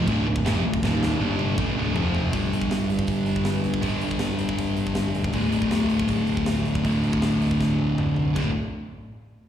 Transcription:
0.07 0.25 D1 loud
0.07 0.25 D2 loud
0.07 0.26 A2 loud
0.07 0.26 D3 loud
0.07 kick loud
0.07 china medium
0.25 0.43 D1 medium
0.25 0.42 D2 medium
0.25 0.42 A2 medium
0.36 kick medium
0.44 0.61 F1 loud
0.44 0.63 F2 medium
0.44 0.63 C3 medium
0.44 0.64 F3 loud
0.44 snare loud
0.44 china medium
0.62 0.80 D1 medium
0.62 0.79 D2 medium
0.62 0.79 A2 medium
0.74 kick loud
0.83 1.17 D#1 loud
0.83 1.20 D#2 loud
0.83 1.20 A#2 loud
0.83 1.20 D#3 loud
0.83 kick medium
0.83 snare medium
1.03 snare medium
1.19 1.54 G1 loud
1.19 1.57 G2 loud
1.19 1.57 D3 medium
1.19 1.57 G3 loud
1.39 high tom medium
1.57 1.75 A1 medium
1.57 1.75 A2 medium
1.57 1.76 E3 loud
1.57 1.76 A3 loud
1.57 kick loud
1.57 mid tom medium
1.76 1.94 D1 medium
1.76 1.94 D2 medium
1.76 1.94 A2 medium
1.76 1.95 D3 loud
1.95 2.30 F1 loud
1.95 2.31 F2 medium
1.95 2.32 C3 medium
1.95 2.32 F3 loud
1.95 floor tom loud
2.15 floor tom loud
2.31 2.48 G1 loud
2.31 3.80 G2 medium
2.31 3.82 D3 medium
2.31 3.82 G3 loud
2.31 kick loud
2.31 open hi-hat medium
2.50 2.65 G1 medium
2.50 open hi-hat medium
2.61 kick medium
2.69 2.84 G1 loud
2.69 snare loud
2.69 open hi-hat medium
2.88 3.03 G1 medium
2.88 open hi-hat medium
2.99 kick medium
3.07 3.22 G1 medium
3.07 kick medium
3.07 open hi-hat medium
3.26 3.41 G1 medium
3.26 open hi-hat soft
3.36 kick medium
3.45 3.60 G1 medium
3.45 snare loud
3.45 open hi-hat medium
3.64 3.79 G1 medium
3.64 open hi-hat soft
3.74 kick medium
3.81 3.98 G1 medium
3.81 5.32 G2 medium
3.81 5.32 D3 medium
3.81 5.33 G3 medium
3.81 kick medium
3.81 open hi-hat medium
4.01 4.16 G1 medium
4.01 open hi-hat medium
4.11 kick medium
4.19 4.35 G1 medium
4.19 snare loud
4.19 open hi-hat medium
4.39 4.54 G1 medium
4.39 open hi-hat medium
4.49 kick medium
4.59 4.73 G1 medium
4.59 kick medium
4.59 open hi-hat medium
4.77 4.92 G1 medium
4.77 open hi-hat medium
4.87 kick medium
4.95 5.11 G1 medium
4.95 snare loud
4.95 open hi-hat medium
5.15 5.30 D#1 medium
5.15 open hi-hat medium
5.24 kick medium
5.32 5.48 D1 medium
5.32 6.83 D2 medium
5.32 6.83 A2 medium
5.32 6.85 D3 loud
5.32 kick medium
5.32 open hi-hat medium
5.52 5.67 D1 medium
5.52 open hi-hat medium
5.62 kick medium
5.71 5.87 D1 medium
5.71 snare loud
5.71 open hi-hat medium
5.90 6.05 D1 medium
5.90 open hi-hat medium
6.00 kick medium
6.08 6.24 D1 medium
6.08 kick medium
6.08 open hi-hat medium
6.27 6.42 D1 medium
6.27 open hi-hat soft
6.37 kick medium
6.46 6.61 D1 medium
6.46 snare loud
6.46 open hi-hat medium
6.65 6.81 D1 medium
6.65 open hi-hat soft
6.75 kick medium
6.83 6.99 D1 medium
6.83 8.33 D2 medium
6.83 8.34 A2 medium
6.83 8.34 D3 loud
6.83 kick medium
6.83 open hi-hat medium
7.03 7.18 D1 medium
7.03 open hi-hat medium
7.13 kick medium
7.21 7.36 D1 medium
7.21 snare medium
7.21 open hi-hat medium
7.40 7.55 D1 medium
7.40 open hi-hat medium
7.51 kick medium
7.61 7.75 D1 medium
7.61 kick medium
7.61 snare medium
7.78 7.93 D1 medium
7.97 8.12 D1 medium
7.97 mid tom medium
8.15 8.31 C2 medium
8.15 floor tom medium
8.34 8.53 D1 medium
8.34 8.50 D2 medium
8.34 8.51 A2 medium
8.34 8.51 D3 medium
8.34 kick medium
8.34 crash medium

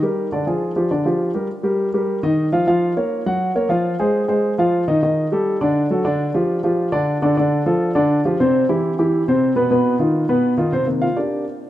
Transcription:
0.02 0.26 G3 medium
0.02 0.27 G4 medium
0.02 0.27 A#4 medium
0.32 0.44 D3 medium
0.32 0.44 D4 medium
0.32 0.44 D5 medium
0.47 0.71 F3 medium
0.47 0.71 F4 medium
0.47 0.71 G#4 medium
0.76 0.88 F3 medium
0.76 0.88 F4 medium
0.76 0.88 G4 medium
0.91 1.03 D3 medium
0.91 1.03 D4 medium
0.91 1.03 D5 medium
1.05 1.29 F3 medium
1.05 1.30 F4 medium
1.05 1.30 G4 medium
1.34 1.47 G3 medium
1.34 1.47 G4 medium
1.34 1.47 A#4 medium
1.63 1.88 G3 medium
1.63 1.88 G4 medium
1.63 1.88 A#4 medium
1.94 2.18 G3 medium
1.94 2.18 G4 medium
1.94 2.18 A#4 medium
2.23 2.47 D#3 medium
2.23 2.47 D#4 medium
2.23 2.47 D#5 medium
2.52 2.64 F3 medium
2.52 2.64 F4 medium
2.52 2.65 F5 medium
2.67 2.91 F3 medium
2.67 2.91 F4 medium
2.67 2.91 F5 medium
2.97 3.21 A#3 medium
2.97 3.21 A#4 medium
2.97 3.21 C#5 medium
3.26 3.50 F#3 medium
3.26 3.50 F#4 medium
3.26 3.50 F#5 medium
3.55 3.67 A#3 medium
3.55 3.67 A#4 medium
3.55 3.67 C#5 medium
3.69 3.93 F3 medium
3.69 3.94 F4 medium
3.69 3.94 F5 medium
3.99 4.23 G#3 medium
3.99 4.23 G#4 medium
3.99 4.24 C5 medium
4.28 4.52 G#3 medium
4.28 4.53 G#4 medium
4.28 4.53 C5 medium
4.58 4.82 F3 medium
4.58 4.82 F4 medium
4.58 4.83 F5 medium
4.88 5.00 D#3 medium
4.88 5.00 D#4 medium
4.88 5.00 D#5 medium
5.03 5.26 D#3 medium
5.03 5.26 D#4 medium
5.03 5.27 D#5 medium
5.32 5.56 G3 medium
5.32 5.56 G4 medium
5.32 5.56 A4 medium
5.61 5.85 D3 medium
5.61 5.85 D4 medium
5.61 5.85 D5 medium
5.90 6.02 F#3 medium
5.90 6.02 F#4 medium
5.90 6.03 A4 medium
6.04 6.29 D3 medium
6.04 6.29 D4 medium
6.04 6.29 D5 medium
6.34 6.58 F3 medium
6.34 6.58 F4 medium
6.34 6.58 G4 medium
6.63 6.87 F3 medium
6.63 6.88 F4 medium
6.63 6.88 G4 medium
6.92 7.16 D3 medium
6.92 7.16 D4 medium
6.92 7.16 D5 medium
7.22 7.34 D3 medium
7.22 7.34 D4 medium
7.22 7.34 D5 medium
7.37 7.61 D3 medium
7.37 7.61 D4 medium
7.37 7.61 D5 medium
7.66 7.90 F3 medium
7.66 7.90 F4 medium
7.66 7.90 A4 medium
7.95 8.19 D3 medium
7.95 8.19 D4 medium
7.95 8.19 D5 medium
8.25 8.37 F3 medium
8.25 8.37 F4 medium
8.25 8.37 G4 medium
8.40 8.64 C3 medium
8.40 8.64 C4 medium
8.40 8.64 C5 medium
8.69 8.93 E3 medium
8.69 8.93 E4 medium
8.69 8.93 G4 medium
8.99 9.22 E3 medium
8.99 9.22 E4 medium
8.99 9.23 G4 medium
9.28 9.51 C3 medium
9.28 9.52 C4 medium
9.28 9.52 C5 medium
9.56 9.68 B2 medium
9.56 9.68 B3 medium
9.56 9.68 B4 medium
9.71 9.95 B2 medium
9.71 9.95 B3 medium
9.71 9.95 B4 medium
9.99 10.23 D#3 medium
9.99 10.24 D#4 medium
9.99 10.24 F4 medium
10.29 10.53 B2 medium
10.29 10.53 B3 medium
10.29 10.53 B4 medium
10.57 10.70 D#3 medium
10.57 10.70 D#4 medium
10.57 10.70 F4 medium
10.72 10.84 C3 medium
10.72 10.85 C4 medium
10.72 10.85 C5 medium
10.85 11.06 C3 soft
10.85 11.06 D#3 soft
10.85 11.07 A#3 medium
11.02 11.16 F4 medium
11.02 11.16 F5 medium
11.16 11.44 D4 soft
11.16 11.44 G4 medium
11.16 11.44 A#4 soft
11.16 11.44 D5 medium

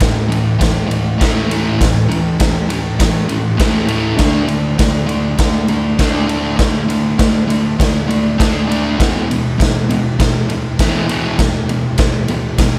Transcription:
0.00 0.27 A2 medium
0.00 0.27 E3 medium
0.00 kick loud
0.00 snare loud
0.00 ride medium
0.28 0.57 A2 medium
0.28 0.57 E3 medium
0.28 ride medium
0.59 0.86 A2 medium
0.59 0.86 E3 medium
0.59 kick loud
0.59 snare loud
0.59 ride loud
0.87 1.16 A2 medium
0.87 1.16 E3 medium
0.91 ride medium
1.18 1.48 A2 medium
1.18 1.48 E3 loud
1.18 1.48 A3 loud
1.18 kick loud
1.18 ride medium
1.22 snare loud
1.49 1.77 A2 medium
1.49 1.78 E3 medium
1.49 1.79 A3 medium
1.49 ride medium
1.79 2.07 A2 medium
1.79 2.07 E3 medium
1.79 kick loud
1.79 ride medium
1.83 snare loud
2.09 2.37 A2 medium
2.09 2.37 E3 medium
2.09 ride medium
2.40 2.67 A2 medium
2.40 2.67 E3 medium
2.40 kick loud
2.40 snare loud
2.40 ride loud
2.69 2.97 A2 medium
2.69 2.97 E3 medium
2.69 ride medium
2.99 3.27 A2 medium
2.99 3.27 E3 medium
2.99 kick loud
2.99 snare loud
2.99 ride loud
3.29 3.56 A2 medium
3.29 3.56 E3 medium
3.29 ride medium
3.57 3.86 A2 medium
3.57 3.87 E3 medium
3.57 3.87 A3 medium
3.57 kick loud
3.57 snare loud
3.57 ride loud
3.87 4.16 A2 medium
3.87 4.17 E3 medium
3.87 4.16 A3 medium
3.87 ride medium
4.17 4.47 D3 medium
4.17 4.47 A3 medium
4.17 4.47 D4 medium
4.17 kick loud
4.17 snare loud
4.17 ride medium
4.48 4.76 D3 medium
4.48 4.76 A3 medium
4.48 ride medium
4.78 5.05 D3 medium
4.78 5.06 A3 medium
4.78 kick loud
4.78 snare loud
4.78 ride medium
5.07 5.35 D3 medium
5.07 5.36 A3 medium
5.07 ride medium
5.38 5.66 D3 medium
5.38 5.66 A3 medium
5.38 kick loud
5.38 snare loud
5.38 ride medium
5.68 5.96 D3 medium
5.68 5.97 A3 medium
5.68 ride medium
5.99 6.26 D3 medium
5.99 6.28 A3 loud
5.99 6.28 D4 medium
5.99 kick loud
5.99 snare loud
5.99 ride medium
6.28 6.56 D3 medium
6.28 6.57 A3 medium
6.28 6.58 D4 medium
6.28 ride medium
6.57 6.86 D3 medium
6.57 6.86 A3 medium
6.57 kick loud
6.57 snare loud
6.57 ride medium
6.89 7.16 D3 medium
6.89 7.16 A3 medium
6.89 ride medium
7.19 7.46 D3 medium
7.19 7.47 A3 medium
7.19 kick loud
7.19 snare loud
7.19 ride medium
7.48 7.76 D3 medium
7.48 7.76 A3 medium
7.48 ride medium
7.79 8.06 D3 medium
7.79 8.06 A3 medium
7.79 kick loud
7.79 snare loud
7.79 ride loud
8.08 8.36 D3 medium
8.08 8.36 A3 medium
8.08 ride medium
8.39 8.67 D3 medium
8.39 8.67 A3 medium
8.39 8.67 D4 loud
8.39 kick loud
8.39 snare loud
8.39 ride loud
8.68 8.97 D3 medium
8.68 8.97 A3 medium
8.68 8.98 D4 loud
8.68 ride medium
8.98 9.27 E2 medium
8.98 9.27 B2 medium
8.98 9.27 E3 medium
8.98 kick loud
8.98 snare loud
8.98 ride medium
9.30 9.57 E2 medium
9.30 9.57 B2 medium
9.30 ride medium
9.58 9.86 E2 medium
9.58 9.86 B2 medium
9.58 kick loud
9.58 ride medium
9.62 snare loud
9.89 10.17 E2 medium
9.89 10.16 B2 medium
9.89 ride medium
10.19 10.46 E2 medium
10.19 10.46 B2 medium
10.19 kick loud
10.19 snare loud
10.19 ride loud
10.49 10.76 E2 medium
10.49 10.76 B2 medium
10.49 ride medium
10.79 11.07 E2 medium
10.79 11.07 B2 medium
10.79 11.08 E3 loud
10.79 kick loud
10.79 snare loud
10.79 ride loud
11.08 11.37 E2 medium
11.08 11.37 B2 medium
11.08 11.37 E3 loud
11.08 ride medium
11.38 11.65 E2 medium
11.38 11.66 B2 medium
11.38 kick loud
11.38 snare loud
11.38 ride medium
11.69 11.96 E2 medium
11.69 11.96 B2 medium
11.69 ride medium
11.98 12.26 E2 medium
11.98 12.26 B2 medium
11.98 kick loud
11.98 snare loud
11.98 ride medium
12.28 12.56 E2 medium
12.28 12.56 B2 medium
12.28 ride medium
12.58 12.79 E2 medium
12.58 12.79 B2 medium
12.58 kick loud
12.58 snare loud
12.58 ride loud

